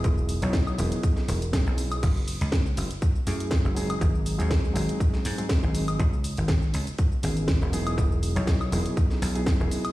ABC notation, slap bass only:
X:1
M:4/4
L:1/16
Q:"Swing 16ths" 1/4=121
K:E
V:1 name="Slap bass" clef=bass
E,,,3 B,,,3 E,,, z3 E,,,3 B,,,3 | F,,,3 C,,3 F,,, z3 F,,3 F,,,3 | G,,,3 D,,3 G,,, z3 G,,3 G,,,3 | C,,3 G,,,3 C,, z3 G,,,3 E,,,3 |
E,,,3 B,,,3 E,,, z3 B,,,3 E,,, z2 |]